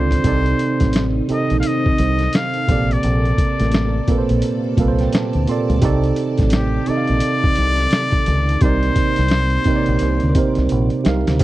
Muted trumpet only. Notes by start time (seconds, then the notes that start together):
Already playing: C5
1.32 D#5
1.60 F5
1.67 D#5
2.36 F5
2.92 D5
6.54 G4
6.89 D5
8.62 C5